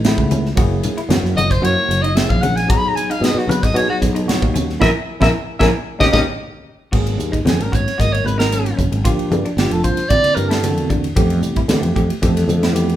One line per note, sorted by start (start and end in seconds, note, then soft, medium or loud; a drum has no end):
0.00 0.13 A1 medium
0.00 0.48 C#3 medium
0.00 0.15 D#4 medium
0.04 0.48 A3 medium
0.04 0.48 B3 medium
0.04 0.49 E4 loud
0.04 snare loud
0.04 ride medium
0.04 high conga medium
0.17 0.53 C#2 medium
0.17 kick medium
0.31 0.54 C#4 medium
0.31 hi-hat pedal medium
0.31 ride medium
0.31 muted conga soft
0.31 high conga medium
0.46 snare soft
0.55 0.80 F#1 medium
0.55 1.00 F#3 medium
0.55 1.00 A#3 medium
0.55 1.00 E4 medium
0.55 0.81 F#4 loud
0.55 1.01 G#4 medium
0.55 kick loud
0.55 ride medium
0.55 muted conga soft
0.83 hi-hat pedal medium
0.83 ride medium
0.83 muted conga soft
0.83 low conga medium
0.98 1.21 E4 medium
0.98 ride medium
1.08 1.22 F#2 medium
1.08 1.53 F#3 medium
1.08 1.53 A#3 medium
1.08 1.53 E4 medium
1.08 1.54 F#4 medium
1.08 snare loud
1.08 ride medium
1.08 high conga medium
1.23 1.35 F#2 medium
1.23 snare soft
1.36 1.60 F#1 medium
1.36 1.60 F#4 medium
1.36 1.53 D#5 medium
1.36 hi-hat pedal medium
1.36 ride medium
1.36 high conga medium
1.51 1.66 C5 loud
1.51 kick medium
1.51 snare soft
1.51 ride medium
1.62 1.75 F#2 loud
1.62 2.06 F#3 medium
1.62 2.06 A#3 medium
1.62 2.07 E4 medium
1.62 1.86 F#4 medium
1.62 2.07 F#4 medium
1.62 2.03 C#5 loud
1.62 ride medium
1.62 muted conga soft
1.89 2.25 F#1 medium
1.89 hi-hat pedal medium
1.89 ride medium
2.02 2.27 D#4 medium
2.02 2.17 D#5 medium
2.02 ride medium
2.15 2.59 F#3 medium
2.15 2.59 A#3 medium
2.15 2.59 E4 medium
2.15 2.60 G#4 medium
2.15 2.31 E5 medium
2.15 snare loud
2.15 ride medium
2.29 2.65 A#1 medium
2.29 2.43 F5 medium
2.29 kick medium
2.41 2.66 C#4 medium
2.41 2.57 F#5 medium
2.41 hi-hat pedal medium
2.41 ride medium
2.41 muted conga soft
2.41 high conga medium
2.56 2.71 G#5 medium
2.56 snare soft
2.56 ride medium
2.67 2.93 B1 loud
2.67 3.11 F#3 medium
2.67 3.12 B3 medium
2.67 3.12 D#4 medium
2.67 2.93 F#4 medium
2.67 3.12 G#4 medium
2.67 2.79 A#5 loud
2.67 kick loud
2.67 ride medium
2.67 muted conga soft
2.77 2.89 B5 loud
2.88 2.97 A#5 medium
2.96 3.12 G#5 medium
2.96 hi-hat pedal medium
2.96 ride medium
2.96 muted conga soft
3.10 3.33 D#4 medium
3.10 3.25 F5 medium
3.10 ride medium
3.20 3.34 B2 medium
3.20 3.64 F#3 medium
3.20 3.64 B3 medium
3.20 3.65 D#4 medium
3.20 3.65 G#4 medium
3.20 3.40 D#5 medium
3.20 ride medium
3.24 snare loud
3.34 3.46 B2 medium
3.34 snare soft
3.38 3.51 F#4 medium
3.48 3.71 B1 medium
3.48 3.72 F#4 medium
3.48 3.65 B4 medium
3.48 hi-hat pedal medium
3.48 ride medium
3.48 high conga medium
3.63 3.78 D#5 loud
3.63 kick medium
3.63 snare soft
3.63 ride medium
3.74 3.87 B2 loud
3.74 4.18 F#3 medium
3.74 4.19 B3 medium
3.74 4.19 D#4 medium
3.74 3.98 F#4 medium
3.74 4.19 G#4 medium
3.74 3.89 C#5 medium
3.74 ride medium
3.74 muted conga soft
3.90 3.97 F#4 medium
4.02 4.37 B1 medium
4.02 kick medium
4.02 snare soft
4.02 hi-hat pedal medium
4.02 ride medium
4.15 4.38 D#4 medium
4.15 ride medium
4.27 4.71 F#3 medium
4.27 4.71 B3 medium
4.27 4.72 D#4 medium
4.27 4.71 F#4 loud
4.27 snare loud
4.27 ride medium
4.27 high conga medium
4.42 4.77 D#2 medium
4.42 kick medium
4.54 4.77 C#4 medium
4.54 hi-hat pedal medium
4.54 ride medium
4.54 muted conga soft
4.54 high conga medium
4.70 snare soft
4.79 4.91 A#1 medium
4.79 4.89 A#3 medium
4.79 4.89 C#4 loud
4.79 4.89 E4 loud
4.79 4.90 E4 loud
4.79 4.90 G#4 loud
4.79 4.90 A#4 medium
4.79 4.88 E5 loud
4.79 kick medium
4.79 snare medium
4.79 high conga medium
5.20 5.31 A#1 medium
5.20 5.29 A#3 medium
5.20 5.28 C#4 medium
5.20 5.29 E4 loud
5.20 5.29 G#4 medium
5.20 5.30 A#4 medium
5.20 5.28 E5 loud
5.20 kick medium
5.20 snare medium
5.20 high conga medium
5.59 5.71 A#1 medium
5.59 5.69 A#3 loud
5.59 5.69 C#4 loud
5.59 5.68 E4 medium
5.59 5.69 E4 medium
5.59 5.69 G#4 loud
5.59 5.69 A#4 loud
5.59 5.66 E5 medium
5.59 kick medium
5.59 snare medium
5.59 high conga medium
5.99 6.10 D#2 loud
5.99 6.08 A#3 medium
5.99 6.08 C#4 medium
5.99 6.09 C#4 medium
5.99 6.08 D#4 medium
5.99 6.09 D#4 medium
5.99 6.09 G4 loud
5.99 6.06 D#5 loud
5.99 kick loud
5.99 snare loud
5.99 high conga medium
6.11 6.23 D#2 medium
6.11 6.20 A#3 medium
6.11 6.21 C#4 medium
6.11 6.22 C#4 medium
6.11 6.21 D#4 loud
6.11 6.22 D#4 medium
6.11 6.22 G4 medium
6.11 6.20 D#5 loud
6.11 kick loud
6.11 snare loud
6.11 high conga loud
6.92 7.16 G#1 medium
6.92 7.36 F#3 medium
6.92 7.36 A#3 medium
6.92 7.36 B3 medium
6.92 7.16 F#4 medium
6.92 7.36 G#4 medium
6.92 kick loud
6.92 crash medium
6.92 muted conga soft
7.07 ride medium
7.18 7.42 D#2 medium
7.18 hi-hat pedal medium
7.32 7.56 D#4 medium
7.32 kick medium
7.32 ride medium
7.45 7.57 F2 medium
7.45 7.89 F#3 medium
7.45 7.89 A#3 medium
7.45 7.90 B3 medium
7.45 7.90 C#4 medium
7.45 7.64 G#4 medium
7.45 snare loud
7.45 hi-hat pedal medium
7.45 ride medium
7.45 muted conga soft
7.45 high conga medium
7.59 7.70 G#1 medium
7.59 7.76 A#4 medium
7.59 ride medium
7.72 7.85 G#1 medium
7.72 7.95 F#4 medium
7.72 8.01 C#5 medium
7.72 kick medium
7.72 hi-hat pedal medium
7.88 snare soft
7.88 ride medium
7.98 8.22 G#1 medium
7.98 8.42 F#3 medium
7.98 8.42 A#3 medium
7.98 8.42 B3 medium
7.98 8.21 F#4 medium
7.98 8.42 A#4 medium
7.98 8.14 D#5 loud
7.98 kick medium
7.98 hi-hat pedal medium
7.98 ride medium
7.98 muted conga soft
8.13 8.27 C#5 medium
8.13 ride medium
8.25 8.72 G#1 medium
8.25 8.39 B4 medium
8.25 hi-hat pedal medium
8.25 muted conga soft
8.25 high conga medium
8.38 8.61 D#4 medium
8.38 8.75 A#4 medium
8.38 snare loud
8.38 ride medium
8.52 8.95 F#3 medium
8.52 8.95 A#3 medium
8.52 8.96 B3 medium
8.52 8.96 C#4 medium
8.52 hi-hat pedal medium
8.52 ride medium
8.66 ride medium
8.77 8.90 F#1 medium
8.77 9.01 C#4 medium
8.77 kick medium
8.77 hi-hat pedal medium
8.77 high conga medium
8.92 9.05 G#1 medium
8.92 ride medium
9.04 9.17 G1 medium
9.04 9.48 F3 medium
9.04 9.48 A#3 medium
9.04 9.49 D4 medium
9.04 9.28 F4 medium
9.04 9.49 G4 medium
9.04 kick loud
9.04 hi-hat pedal medium
9.04 ride medium
9.18 muted fretless electric bass stroke soft
9.18 ride soft
9.31 9.43 G2 medium
9.31 hi-hat pedal medium
9.31 high conga medium
9.45 9.68 D4 medium
9.45 ride medium
9.57 9.69 G1 loud
9.57 10.01 F3 medium
9.57 10.01 A#3 medium
9.57 10.02 D4 medium
9.57 10.02 F4 medium
9.57 9.74 G4 medium
9.57 snare loud
9.57 hi-hat pedal medium
9.57 ride medium
9.57 muted conga soft
9.71 9.82 F1 medium
9.71 9.83 A4 medium
9.71 ride medium
9.84 9.96 C2 medium
9.84 10.07 F4 medium
9.84 10.10 C5 medium
9.84 kick medium
9.84 hi-hat pedal medium
9.97 muted fretless electric bass stroke soft
9.97 snare soft
9.97 ride medium
10.09 10.23 C2 medium
10.09 10.53 D3 medium
10.09 10.54 A#3 medium
10.09 10.54 C4 medium
10.09 10.54 E4 medium
10.09 10.34 F#4 medium
10.09 10.36 D5 loud
10.09 kick medium
10.09 hi-hat pedal medium
10.09 ride medium
10.09 muted conga soft
10.24 snare soft
10.24 ride medium
10.35 10.77 G2 medium
10.35 10.50 A#4 medium
10.35 hi-hat pedal medium
10.35 muted conga soft
10.48 10.74 E4 medium
10.48 10.89 A4 medium
10.48 snare loud
10.48 ride medium
10.62 11.06 D3 medium
10.62 11.06 A#3 medium
10.62 11.07 C4 medium
10.62 11.07 F#4 medium
10.62 snare soft
10.62 hi-hat pedal medium
10.62 ride medium
10.62 high conga medium
10.77 11.12 E2 medium
10.77 ride medium
10.90 11.13 D4 medium
10.90 kick medium
10.90 hi-hat pedal medium
10.90 high conga medium
11.04 ride medium
11.15 11.40 F2 loud
11.15 11.59 E3 medium
11.15 11.60 A3 medium
11.15 11.60 B3 medium
11.15 11.40 G4 medium
11.15 11.60 G4 medium
11.15 kick loud
11.15 hi-hat pedal medium
11.15 ride medium
11.30 ride medium
11.42 11.66 C2 medium
11.42 hi-hat pedal medium
11.56 11.80 E4 medium
11.56 kick medium
11.56 ride medium
11.68 11.81 D3 medium
11.68 12.13 E3 medium
11.68 12.13 A3 medium
11.68 12.13 B3 medium
11.68 12.13 G4 medium
11.68 snare medium
11.68 hi-hat pedal medium
11.68 ride medium
11.68 muted conga soft
11.68 high conga medium
11.82 11.94 F2 medium
11.82 ride medium
11.96 12.08 F2 medium
11.96 12.19 G4 medium
11.96 kick medium
11.96 hi-hat pedal medium
12.10 ride medium
12.22 12.46 F2 loud
12.22 12.66 E3 medium
12.22 12.66 A3 medium
12.22 12.66 B3 medium
12.22 12.46 G4 medium
12.22 12.67 A4 medium
12.22 kick medium
12.22 hi-hat pedal medium
12.22 ride medium
12.37 snare soft
12.37 ride medium
12.48 12.95 F2 medium
12.48 hi-hat pedal medium
12.48 muted conga soft
12.48 high conga medium
12.63 12.86 E4 medium
12.63 snare medium
12.63 ride medium
12.73 12.96 E3 medium
12.73 12.96 A3 medium
12.73 12.96 B3 medium
12.73 12.96 G4 medium
12.73 hi-hat pedal medium
12.73 ride medium
12.89 ride medium